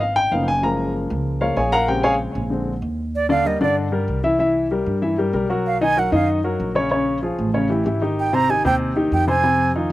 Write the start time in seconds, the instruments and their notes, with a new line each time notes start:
Already playing: upright bass G#1
0.01 grand piano F5
0.16 grand piano G5
0.31 upright bass F#1, grand piano F3 A#3 B3 D#4 F5
0.48 grand piano G#5
0.62 grand piano F3 G#3 A#3 A#5
1.10 upright bass C#2
1.40 grand piano F3 G#3 A#3 F4 A#4 C#5 F5
1.57 upright bass A#1, grand piano G#4 C#5 F5 G#5
1.72 grand piano A#4 F5 F#5 A#5
1.87 grand piano C#3 G#3 C4 G4 G5
2.03 grand piano G#4 C#5 F5 G#5
2.35 upright bass A#1
2.50 grand piano D3 G#3 C4
2.82 upright bass D#2
3.15 flute D5
3.29 grand piano D3 D4 D5, flute F5
3.45 grand piano G3 G4 A#4, flute D#5
3.61 upright bass G2, grand piano D3 D4 D5, flute D5
3.92 grand piano G3 G4 A#4
4.08 upright bass C2
4.24 grand piano E3 E4 E5
4.39 grand piano E3 E4 E5
4.71 grand piano G3 G4 A#4
4.86 upright bass G2
5.02 grand piano E3 E4 E5
5.18 grand piano G3 G4 A#4
5.33 upright bass B1, grand piano G3 G4 A#4
5.50 grand piano F#3 F#4 A#4
5.67 flute F5
5.81 grand piano D#3 D#4 D#5, flute G#5
5.96 grand piano F#3 F#4 A#4, flute F#5
6.12 upright bass F#2, grand piano D#3 D#4 D#5, flute F5
6.44 grand piano F#3 F#4 A#4
6.60 upright bass A#1
6.75 grand piano C#3 C#4 C#5
6.91 grand piano C#3 C#4 C#5
7.22 grand piano F3 F4 G#4
7.39 upright bass A1
7.54 grand piano C#3 C#4 C#5
7.70 grand piano E3 E4 G4
7.86 upright bass G#1, grand piano E3 E4 G4
8.02 grand piano D#3 D#4 G4
8.20 flute G5
8.33 grand piano C3 C4 C5, flute A#5
8.49 grand piano D#3 D#4 G4, flute G#5
8.65 upright bass D#2, grand piano C3 C4 C5, flute G5
8.96 grand piano D#3 D#4 G4
9.12 upright bass F2, flute G5
9.27 grand piano C3 C4 C5, flute G#5
9.43 grand piano C3 C4 C5
9.75 grand piano D#3 D#4 F4